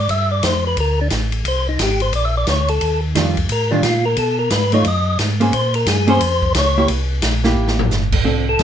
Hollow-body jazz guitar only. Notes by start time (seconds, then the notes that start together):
3.15 D#3 G3 D4 F4
3.71 D#3 G3 D4 F4
4.73 A3 D#4 F4
5.40 A#3 C#4 G#4 C5
6.07 A#3 C#4 G#4 C5
6.78 A#3 E4 G4
7.44 A#3 E4 G4
8.24 F3 C4 D4 A4
8.59 F3 C4